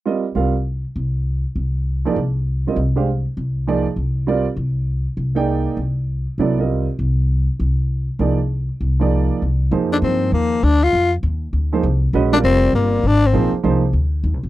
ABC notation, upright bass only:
X:1
M:4/4
L:1/8
Q:"Swing" 1/4=199
K:Fdor
V:1 name="Upright bass" clef=bass
z2 C,,3 z C,,2- | C,, z C,,3 z C,,2- | C,, z C,,3 z C,,2- | C,, z C,,3 z C,,2- |
C,, z C,,3 z C,,2- | C,, z C,,3 z C,,2- | C,, z C,,3 z C,,2- | C,, z C,,3 z C,,2 |
F,,2 G,,2 E,,2 D,,2 | F,,2 E,,2 D,,2 C,,2 | B,,,2 F,,,2 G,,,2 A,,,2 | B,,, z C,,2 D,,2 (3E,, C,, B,,, |]